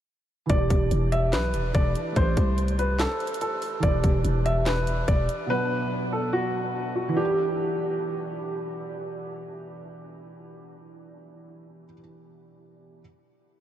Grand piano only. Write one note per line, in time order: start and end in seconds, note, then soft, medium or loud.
0.50 0.89 D5 loud
1.12 1.31 E5 medium
1.33 1.72 B4 medium
1.75 2.14 D5 loud
2.17 2.56 C5 loud
2.79 2.97 B4 medium
3.00 3.39 A4 medium
3.41 3.81 A4 medium
3.83 4.22 D5 medium
4.46 4.64 E5 medium
4.66 5.05 B4 medium
5.08 5.47 D5 medium
5.50 5.89 B4 loud
6.12 6.31 A4 medium
6.33 6.92 F#4 medium
6.95 7.14 F#4 medium
7.17 8.37 G4 medium